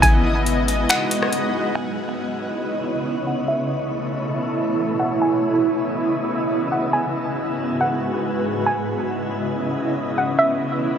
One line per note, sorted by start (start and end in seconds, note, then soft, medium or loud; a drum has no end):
0.00 0.86 G#1 loud
0.00 1.74 G#3 medium
0.00 1.74 B3 medium
0.00 1.74 F#4 medium
0.00 1.74 G#4 medium
0.00 1.74 B4 medium
0.00 1.72 D#5 medium
0.00 1.74 F#5 medium
0.00 0.85 G#5 loud
0.00 kick loud
0.00 closed hi-hat medium
0.46 closed hi-hat medium
0.68 closed hi-hat medium
0.89 1.30 F#5 medium
0.89 finger snap loud
0.89 closed hi-hat medium
1.11 closed hi-hat medium
1.23 cross-stick medium
1.33 closed hi-hat medium
1.75 3.47 C#3 medium
1.75 3.47 B3 medium
1.75 3.47 E4 medium
1.75 6.90 C#5 medium
1.75 3.47 D#5 medium
1.75 2.58 G#5 loud
3.27 3.48 F#5 medium
3.48 5.19 B2 medium
3.48 5.19 A3 medium
3.48 5.20 B3 medium
3.48 6.90 E4 medium
3.48 5.20 A4 medium
3.48 5.19 C#5 medium
3.48 4.95 E5 loud
3.48 5.20 E5 medium
5.00 5.20 F#5 medium
5.21 6.92 C#3 medium
5.21 6.92 B3 medium
5.21 6.92 E4 medium
5.21 6.92 D#5 medium
5.21 6.04 G#5 medium
6.72 6.93 F#5 medium
6.93 8.65 G#2 medium
6.93 8.65 G#3 medium
6.93 8.65 B3 medium
6.93 8.65 F#4 medium
6.93 8.65 G#4 medium
6.93 8.65 B4 medium
6.93 8.65 F#5 medium
6.93 7.76 G#5 loud
7.81 8.21 F#5 medium
8.66 10.38 C#3 medium
8.66 10.38 B3 medium
8.66 10.98 C#4 medium
8.66 10.37 E4 medium
8.66 10.98 E4 medium
8.66 10.98 B4 medium
8.66 10.38 D#5 medium
8.66 9.49 G#5 loud
10.18 10.38 F#5 medium
10.39 10.98 B2 medium
10.39 10.98 A3 medium
10.39 10.98 A4 medium
10.39 10.98 C#5 medium
10.39 10.98 E5 loud
10.39 10.98 E5 medium